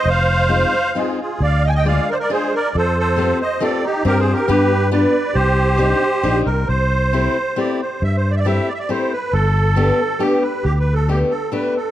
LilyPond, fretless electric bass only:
\new Staff \with { instrumentName = "Fretless electric bass" } { \clef bass \time 3/4 \key c \minor \tempo 4 = 136 f,,2 r4 | d,2 r4 | f,2 r4 | g,4 g,2 |
c,2 bes,,8 c,8 | \key c \major c,2 r4 | g,2 r4 | g,,2 r4 |
d,2 r4 | }